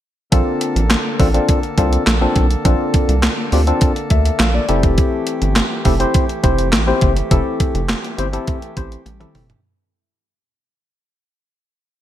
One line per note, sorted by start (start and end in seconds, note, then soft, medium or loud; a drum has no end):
0.32 0.42 A#1 loud
0.32 4.65 D3 medium
0.32 4.65 A#3 medium
0.32 0.80 C4 medium
0.32 0.80 D4 medium
0.32 0.81 F4 medium
0.32 4.65 A4 medium
0.32 0.81 A4 medium
0.32 kick loud
0.32 closed hi-hat medium
0.61 closed hi-hat medium
0.76 0.96 A1 medium
0.76 closed hi-hat medium
0.91 snare loud
0.91 clap medium
0.91 closed hi-hat medium
1.19 1.40 A1 loud
1.19 1.27 C4 medium
1.19 1.28 D4 medium
1.19 1.28 F4 medium
1.19 1.28 A4 loud
1.19 kick loud
1.19 open hi-hat medium
1.34 1.58 C4 medium
1.34 1.58 D4 medium
1.34 1.58 F4 medium
1.34 1.59 A4 medium
1.34 closed hi-hat medium
1.49 kick loud
1.49 closed hi-hat medium
1.63 closed hi-hat soft
1.78 1.98 C2 medium
1.78 2.02 C4 medium
1.78 2.02 D4 medium
1.78 2.02 F4 medium
1.78 2.02 A4 medium
1.78 kick medium
1.78 closed hi-hat medium
1.93 closed hi-hat medium
2.07 2.27 A#1 medium
2.07 snare loud
2.07 clap medium
2.07 closed hi-hat medium
2.21 2.46 C4 medium
2.21 2.46 D4 medium
2.21 2.46 F4 medium
2.21 2.46 A4 loud
2.36 2.56 B1 medium
2.36 kick medium
2.36 closed hi-hat medium
2.51 closed hi-hat soft
2.65 2.75 A#1 loud
2.65 3.13 C4 medium
2.65 3.14 D4 medium
2.65 3.14 F4 medium
2.65 3.14 A4 medium
2.65 kick loud
2.65 closed hi-hat medium
2.94 kick loud
2.94 closed hi-hat medium
3.09 3.29 C2 medium
3.09 closed hi-hat medium
3.23 snare loud
3.23 clap medium
3.23 closed hi-hat medium
3.52 3.72 D2 loud
3.52 3.61 C4 medium
3.52 3.61 D4 medium
3.52 3.61 F4 medium
3.52 3.61 G4 medium
3.52 open hi-hat medium
3.67 3.91 C4 medium
3.67 3.91 D4 medium
3.67 3.91 F4 medium
3.67 3.92 A4 loud
3.67 closed hi-hat medium
3.81 kick loud
3.81 closed hi-hat medium
3.96 closed hi-hat soft
4.10 4.31 D2 medium
4.10 4.39 E5 medium
4.10 kick medium
4.10 closed hi-hat medium
4.25 closed hi-hat medium
4.40 4.60 A#1 medium
4.40 4.54 F5 medium
4.40 snare loud
4.40 clap medium
4.40 closed hi-hat medium
4.54 4.82 D5 medium
4.68 4.99 F1 loud
4.68 9.60 E3 medium
4.68 9.60 A3 medium
4.68 5.62 C4 medium
4.68 5.62 E4 medium
4.68 9.60 G4 medium
4.68 5.62 G4 medium
4.68 5.62 A4 medium
4.68 closed hi-hat medium
4.83 kick medium
4.83 closed hi-hat soft
4.98 kick loud
4.98 closed hi-hat medium
5.27 closed hi-hat medium
5.42 5.62 G1 medium
5.42 closed hi-hat soft
5.56 snare loud
5.56 clap medium
5.56 closed hi-hat medium
5.85 6.05 F1 medium
5.85 5.93 C4 medium
5.85 5.93 E4 medium
5.85 5.94 G4 medium
5.85 5.94 A4 loud
5.85 kick loud
5.85 open hi-hat medium
6.00 6.24 C4 medium
6.00 6.24 E4 medium
6.00 6.24 G4 medium
6.00 6.25 C5 medium
6.00 closed hi-hat medium
6.14 kick loud
6.14 closed hi-hat medium
6.29 closed hi-hat soft
6.43 6.75 F1 medium
6.43 6.68 C4 medium
6.43 6.68 E4 medium
6.43 6.68 G4 medium
6.43 6.68 C5 medium
6.43 kick medium
6.43 closed hi-hat medium
6.59 closed hi-hat medium
6.73 6.93 A1 medium
6.73 snare loud
6.73 clap medium
6.73 closed hi-hat medium
6.87 7.11 C4 medium
6.87 7.11 E4 medium
6.87 7.12 G4 medium
6.87 7.12 C5 medium
7.01 7.22 F#1 medium
7.01 kick medium
7.01 closed hi-hat medium
7.17 closed hi-hat soft
7.31 7.41 F1 loud
7.31 7.79 C4 medium
7.31 7.80 E4 medium
7.31 7.80 G4 medium
7.31 7.80 A4 medium
7.31 kick loud
7.31 closed hi-hat medium
7.60 kick loud
7.60 closed hi-hat medium
7.75 7.95 F1 loud
7.75 closed hi-hat soft
7.89 snare loud
7.89 clap medium
7.89 closed hi-hat loud
8.04 closed hi-hat soft
8.18 8.38 G1 medium
8.18 8.26 C4 medium
8.18 8.26 E4 medium
8.18 8.27 G4 medium
8.18 8.27 C5 medium
8.18 closed hi-hat medium
8.33 8.57 C4 medium
8.33 8.57 E4 medium
8.33 8.57 G4 medium
8.33 8.58 A4 medium
8.33 closed hi-hat medium
8.47 kick loud
8.47 closed hi-hat medium
8.62 closed hi-hat soft
8.77 8.97 A1 medium
8.77 9.01 C4 medium
8.77 9.01 E4 medium
8.77 9.01 G4 medium
8.77 9.01 C5 medium
8.77 kick medium
8.77 closed hi-hat medium
8.92 closed hi-hat medium
9.06 9.26 A1 loud
9.06 closed hi-hat medium
9.06 high tom medium
9.20 9.44 C4 medium
9.20 9.45 E4 medium
9.20 9.45 G4 medium
9.20 9.45 A4 medium
9.20 closed hi-hat soft
9.20 mid tom medium
9.35 9.55 F#1 loud
9.35 mid tom medium
9.35 open hi-hat medium
9.50 closed hi-hat medium
9.50 floor tom medium